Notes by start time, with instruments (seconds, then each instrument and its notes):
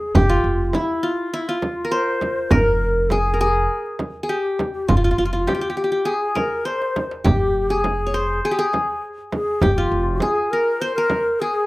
Already playing: ney G#4, qanun G#4
0.15 upright bass F1, ney G4, qanun G4, frame drum, darbuka dum
0.29 ney F4, qanun F4
0.44 upright bass F1
0.73 ney E4, qanun E4, darbuka tek, frame drum
1.03 qanun F4
1.33 ney E4, qanun E4, darbuka ka
1.47 ney F4, qanun F4, darbuka ka
1.62 darbuka tek, frame drum
1.85 qanun A#4
1.91 qanun C5, ney C#5
1.97 ney C5
2.08 darbuka ka
2.21 darbuka tek, frame drum
2.50 upright bass F1, ney A#4, qanun A#4, frame drum, darbuka dum
2.67 darbuka ka
3.09 qanun G#4, ney G#4 A4, darbuka tek, frame drum
3.34 qanun A#4
3.40 ney G4, qanun G#4
3.51 ney G#4
3.71 darbuka ka
3.86 darbuka ka
3.99 darbuka tek, frame drum
4.23 qanun G#4
4.28 ney G4, qanun G4
4.45 darbuka ka
4.59 darbuka tek, frame drum
4.73 ney G4
4.88 upright bass F1, ney F4, qanun F4, frame drum, darbuka dum
4.97 qanun F4
5.04 qanun F4, darbuka ka
5.11 qanun F4
5.18 upright bass F1, qanun F4
5.25 qanun F4
5.32 ney E4 F4, qanun F4
5.39 ney F4
5.47 qanun G4, ney G4, darbuka tek, frame drum
5.55 qanun G4
5.61 qanun G4, darbuka ka
5.70 qanun G4
5.77 qanun G4
5.84 qanun G4
5.92 qanun G4, darbuka ka
6.05 qanun G#4, ney G#4, darbuka ka
6.23 darbuka ka
6.35 qanun A#4, ney A#4, darbuka tek, frame drum
6.65 qanun C5, ney C5, darbuka tek
6.82 darbuka ka
6.96 darbuka tek, frame drum
7.11 darbuka ka
7.24 upright bass F1, qanun G4, ney G4, frame drum, darbuka dum
7.41 darbuka ka
7.69 ney G4, qanun G#4
7.82 ney G#4, darbuka tek, frame drum
8.07 qanun C#5
8.14 qanun C5
8.44 ney G#4, qanun G#4, darbuka ka
8.51 qanun G4
8.57 qanun G#4, ney A4, darbuka ka
8.62 ney G#4
8.73 darbuka tek, frame drum
9.18 darbuka ka
9.32 ney G#4, darbuka tek, frame drum
9.62 upright bass F1, ney G4, qanun G4, frame drum, darbuka dum
9.77 ney F4, qanun F4
9.91 upright bass F1
10.20 ney G#4, qanun G#4, darbuka tek, frame drum
10.51 ney A#4, qanun A#4
10.81 ney C5, qanun C5, darbuka ka
10.95 ney A#4, qanun A#4, darbuka ka
11.10 darbuka tek, frame drum
11.40 ney G#4, qanun G#4
11.55 darbuka ka